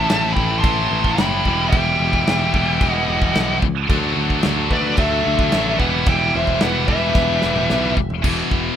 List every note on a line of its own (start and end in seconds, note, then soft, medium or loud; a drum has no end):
0.00 0.61 A2 medium
0.00 0.09 A2 medium
0.00 0.63 E3 loud
0.00 0.63 A3 loud
0.00 0.32 E5 medium
0.00 0.32 A5 loud
0.05 0.12 E3 medium
0.09 0.33 A1 medium
0.09 0.17 A2 medium
0.09 0.19 E3 medium
0.09 snare loud
0.09 crash medium
0.17 0.25 A2 medium
0.17 0.27 E3 medium
0.25 0.32 A2 medium
0.25 0.35 E3 medium
0.32 0.60 A1 medium
0.32 0.39 A2 medium
0.32 0.43 E3 medium
0.32 0.60 G5 medium
0.32 0.59 B5 medium
0.37 0.47 A2 medium
0.37 kick medium
0.43 0.51 E3 medium
0.47 0.55 A2 medium
0.47 0.59 E3 medium
0.56 0.63 A2 medium
0.56 0.67 E3 medium
0.56 1.11 C6 loud
0.60 0.87 A1 medium
0.60 1.43 A2 medium
0.60 0.71 A2 medium
0.60 1.44 E3 medium
0.60 1.13 A5 medium
0.60 kick loud
0.60 crash medium
0.65 0.73 E3 medium
0.65 1.44 A3 medium
0.71 0.78 A2 medium
0.71 0.81 E3 medium
0.79 0.86 A2 medium
0.83 0.92 A2 medium
0.83 0.90 E3 medium
0.90 1.15 A1 medium
0.90 1.00 A2 medium
0.90 0.98 E3 medium
1.00 1.07 A2 medium
1.00 1.04 E3 medium
1.04 1.15 A2 medium
1.04 1.13 E3 medium
1.04 kick medium
1.11 1.21 E3 medium
1.11 1.67 G5 medium
1.11 1.71 B5 loud
1.17 1.42 F#1 medium
1.17 1.23 A2 medium
1.17 snare loud
1.17 crash medium
1.22 1.30 A2 medium
1.22 1.29 E3 medium
1.29 1.38 A2 medium
1.29 1.37 E3 medium
1.37 1.46 A2 medium
1.37 1.45 E3 medium
1.44 1.69 E1 medium
1.44 2.52 E2 medium
1.44 2.52 B2 medium
1.44 1.53 E3 medium
1.44 2.50 E3 medium
1.44 1.54 G3 loud
1.44 kick medium
1.54 1.61 E3 medium
1.54 1.61 G3 medium
1.61 1.69 E3 medium
1.61 1.69 G3 medium
1.69 1.96 E1 loud
1.69 1.77 E3 medium
1.69 1.77 G3 medium
1.69 2.89 E5 medium
1.69 2.89 G5 loud
1.69 kick loud
1.73 crash medium
1.78 1.84 E3 medium
1.78 1.85 G3 medium
1.84 1.92 E3 medium
1.84 1.93 G3 medium
1.93 2.00 E3 medium
1.93 2.00 G3 medium
2.00 2.23 E1 medium
2.00 2.07 E3 medium
2.00 2.08 G3 medium
2.07 2.15 E3 medium
2.07 2.16 G3 medium
2.13 2.23 E3 medium
2.13 2.23 G3 medium
2.13 kick medium
2.23 2.31 E3 medium
2.23 2.31 G3 loud
2.23 crash medium
2.28 2.51 E1 loud
2.28 snare loud
2.32 2.39 E3 medium
2.32 2.39 G3 medium
2.39 2.46 E3 medium
2.39 2.47 G3 medium
2.46 2.54 E3 medium
2.46 2.55 G3 medium
2.51 2.77 E1 loud
2.51 3.61 E2 medium
2.51 3.61 B2 medium
2.51 3.60 E3 medium
2.51 2.62 E3 medium
2.51 2.62 G3 medium
2.51 kick medium
2.63 2.69 E3 medium
2.63 2.70 G3 medium
2.70 2.77 E3 medium
2.70 2.78 G3 medium
2.77 2.85 E3 medium
2.77 2.86 G3 medium
2.77 kick loud
2.77 crash medium
2.82 3.05 E1 loud
2.86 2.94 E3 medium
2.86 2.94 G3 medium
2.86 3.57 D#5 medium
2.86 3.57 F#5 loud
2.94 3.01 E3 medium
2.94 3.01 G3 medium
3.01 3.09 E3 medium
3.01 3.09 G3 medium
3.08 3.31 E1 loud
3.08 3.16 E3 medium
3.08 3.17 G3 medium
3.16 3.24 E3 medium
3.16 3.23 G3 medium
3.22 3.32 E3 medium
3.22 3.31 G3 medium
3.22 kick medium
3.32 3.59 B1 medium
3.32 3.39 E3 medium
3.32 3.40 G3 medium
3.32 snare loud
3.32 crash medium
3.40 3.47 E3 medium
3.40 3.47 G3 medium
3.47 3.56 E3 medium
3.47 3.55 G3 medium
3.56 3.64 E3 medium
3.56 3.64 G3 medium
3.62 3.86 C#2 medium
3.62 kick medium
3.87 4.13 D2 loud
3.87 4.95 D3 loud
3.87 3.98 D3 medium
3.87 4.96 A3 medium
3.87 4.97 D4 loud
3.87 kick loud
3.87 crash medium
3.91 3.98 F#3 loud
3.99 4.05 D3 medium
3.99 4.06 F#3 medium
4.05 4.12 D3 medium
4.05 4.14 F#3 medium
4.12 4.40 D2 medium
4.12 4.20 D3 medium
4.12 4.21 F#3 medium
4.20 4.28 D3 medium
4.20 4.29 F#3 medium
4.28 4.36 D3 medium
4.28 4.37 F#3 medium
4.28 kick medium
4.36 4.43 D3 medium
4.36 4.44 F#3 medium
4.42 4.68 D2 medium
4.42 4.50 D3 medium
4.42 4.52 F#3 medium
4.42 snare loud
4.42 crash medium
4.52 4.59 D3 medium
4.52 4.59 F#3 loud
4.60 4.67 D3 medium
4.60 4.67 F#3 medium
4.67 4.94 D2 loud
4.67 4.74 D3 medium
4.67 4.75 F#3 medium
4.67 4.96 B4 medium
4.67 kick medium
4.73 4.81 D3 medium
4.73 4.81 F#3 medium
4.73 5.00 D5 medium
4.81 4.89 D3 medium
4.81 4.89 F#3 loud
4.89 4.96 D3 medium
4.89 4.97 F#3 medium
4.96 5.21 D2 loud
4.96 5.77 D3 medium
4.96 5.03 D3 medium
4.96 5.04 F#3 loud
4.96 5.78 A3 medium
4.96 5.78 D4 medium
4.96 5.77 A4 medium
4.96 5.76 E5 loud
4.96 kick loud
4.96 crash medium
5.03 5.11 D3 medium
5.03 5.12 F#3 medium
5.12 5.19 D3 medium
5.12 5.20 F#3 medium
5.20 5.27 D3 medium
5.20 5.27 F#3 medium
5.27 5.50 D2 loud
5.27 5.34 D3 medium
5.27 5.35 F#3 medium
5.35 5.42 D3 medium
5.35 5.42 F#3 medium
5.39 5.50 D3 medium
5.39 5.50 F#3 medium
5.39 kick medium
5.50 5.76 A1 loud
5.50 5.57 D3 medium
5.50 5.58 F#3 medium
5.50 snare loud
5.50 crash medium
5.57 5.65 D3 medium
5.57 5.65 F#3 medium
5.65 5.73 D3 medium
5.65 5.72 F#3 medium
5.72 5.79 D3 medium
5.72 5.79 F#3 medium
5.78 6.03 E1 medium
5.78 6.86 E2 medium
5.78 6.86 B2 medium
5.78 5.87 E3 medium
5.78 6.85 E3 medium
5.78 5.87 G3 loud
5.78 6.05 B4 medium
5.78 6.05 F#5 medium
5.78 kick medium
5.87 5.94 E3 medium
5.87 5.95 G3 medium
5.95 6.02 E3 medium
5.95 6.03 G3 medium
6.02 6.10 E3 medium
6.02 6.11 G3 medium
6.02 crash medium
6.07 6.30 E1 medium
6.07 6.17 E3 medium
6.07 6.33 E5 medium
6.07 6.34 G5 loud
6.07 kick loud
6.11 6.19 G3 medium
6.18 6.25 E3 medium
6.18 6.26 G3 medium
6.26 6.34 E3 medium
6.26 6.34 G3 medium
6.34 6.58 E1 medium
6.34 6.42 E3 medium
6.34 6.42 G3 medium
6.34 6.61 C5 medium
6.34 6.63 E5 medium
6.42 6.49 E3 medium
6.42 6.50 G3 medium
6.47 6.56 E3 medium
6.47 6.57 G3 medium
6.47 kick medium
6.57 6.64 E3 medium
6.57 6.65 G3 medium
6.57 crash medium
6.61 6.85 E1 medium
6.61 6.72 E3 medium
6.61 6.87 B4 medium
6.61 6.88 F#5 loud
6.61 snare loud
6.65 6.72 G3 medium
6.72 6.80 E3 medium
6.72 6.80 G3 medium
6.80 6.88 E3 medium
6.80 6.87 G3 medium
6.87 7.11 E1 medium
6.87 7.96 E2 medium
6.87 7.95 B2 medium
6.87 7.95 E3 medium
6.87 6.95 E3 medium
6.87 6.95 G3 medium
6.87 7.94 B4 medium
6.87 7.93 E5 medium
6.87 kick medium
6.96 7.02 E3 medium
6.96 7.04 G3 medium
7.02 7.10 E3 medium
7.02 7.11 G3 medium
7.11 7.18 E3 medium
7.11 7.19 G3 medium
7.11 snare medium
7.15 7.39 E1 medium
7.15 kick loud
7.19 7.26 E3 medium
7.19 7.27 G3 medium
7.26 7.34 E3 medium
7.26 7.35 G3 medium
7.34 7.42 E3 medium
7.34 7.43 G3 medium
7.42 7.67 E1 medium
7.42 7.50 E3 medium
7.42 7.50 G3 medium
7.42 snare medium
7.50 7.57 E3 medium
7.50 7.58 G3 medium
7.56 7.65 E3 medium
7.56 7.65 G3 medium
7.56 mid tom medium
7.66 7.73 E3 medium
7.66 7.73 G3 medium
7.66 snare loud
7.71 7.94 B1 loud
7.71 7.81 E3 medium
7.71 7.80 G3 medium
7.81 7.88 E3 medium
7.81 7.88 G3 medium
7.88 7.96 E3 medium
7.88 7.97 G3 medium
7.97 8.20 E1 medium
7.97 kick medium
8.10 floor tom medium
8.22 8.41 E1 medium
8.22 8.76 E2 medium
8.22 8.76 E2 loud
8.22 8.76 B2 medium
8.22 8.76 E3 medium
8.22 kick loud
8.22 crash loud
8.28 8.76 E3 loud
8.51 8.69 E1 medium
8.51 kick medium